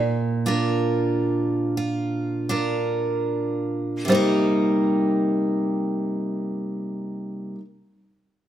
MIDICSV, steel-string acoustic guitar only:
0, 0, Header, 1, 2, 480
1, 0, Start_track
1, 0, Key_signature, -3, "minor"
1, 0, Tempo, 1239669
1, 431, Tempo, 1405152
1, 911, Tempo, 1587302
1, 1390, Time_signature, 3, 2, 24, 8
1, 2715, End_track
2, 0, Start_track
2, 0, Title_t, "Steel-string acoustic guitar"
2, 0, Program_c, 0, 25
2, 0, Note_on_c, 0, 46, 63
2, 178, Note_on_c, 0, 62, 43
2, 180, Note_on_c, 0, 65, 43
2, 186, Note_on_c, 0, 70, 49
2, 652, Note_off_c, 0, 65, 0
2, 656, Note_on_c, 0, 65, 42
2, 899, Note_off_c, 0, 62, 0
2, 899, Note_off_c, 0, 65, 0
2, 902, Note_on_c, 0, 62, 41
2, 905, Note_on_c, 0, 65, 33
2, 906, Note_off_c, 0, 70, 0
2, 908, Note_on_c, 0, 70, 40
2, 1373, Note_off_c, 0, 46, 0
2, 1374, Note_on_c, 0, 48, 48
2, 1383, Note_on_c, 0, 55, 55
2, 1388, Note_off_c, 0, 62, 0
2, 1389, Note_on_c, 0, 58, 60
2, 1393, Note_off_c, 0, 65, 0
2, 1395, Note_on_c, 0, 63, 66
2, 1402, Note_off_c, 0, 70, 0
2, 1403, Note_on_c, 0, 70, 62
2, 2432, Note_off_c, 0, 48, 0
2, 2442, Note_off_c, 0, 55, 0
2, 2447, Note_off_c, 0, 58, 0
2, 2453, Note_off_c, 0, 63, 0
2, 2462, Note_off_c, 0, 70, 0
2, 2715, End_track
0, 0, End_of_file